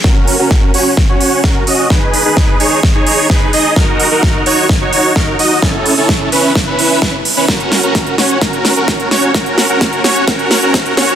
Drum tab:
HH |--o---o---o---o-|--o---o---o---o-|--o---o---o---o-|--o---o---o---o-|
SD |o---o---o---o---|o---o---o---o---|o---o---o---o---|o---o---o---o---|
BD |o---o---o---o---|o---o---o---o---|o---o---o---o---|o---o---o---o---|

HH |-xoxxxoxxxoxxxox|xxoxxxoxxxoxxxox|
SD |o-o-o-o-o-o-o-o-|o-o-o-o-o-o-o-o-|
BD |o---o---o---o---|o---o---o---o---|